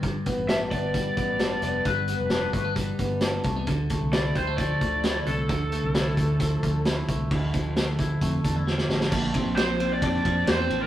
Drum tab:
CC |----------------|----------------|----------------|----------------|
RD |----------------|----------------|----------------|----------------|
HH |x-x-x-x-x-x-x-x-|x-x-x-x-x-x-x-x-|x-x-x-x-x-x-x-x-|x-x-x-x-x-x-x-x-|
SD |----o-------o---|----o-------o---|----o-------o---|----o-------o---|
BD |o-o---o-o-o-----|o-----o-o-o---o-|o-o---o-o-o-----|o-----o-o-o---o-|

CC |x---------------|x---------------|
RD |----------------|--x-x-x-x-x-x-x-|
HH |--x-x-x-x-x-----|----------------|
SD |----o-------oooo|----o-------o---|
BD |o-o---o-o-o-----|o-o-----o-o-----|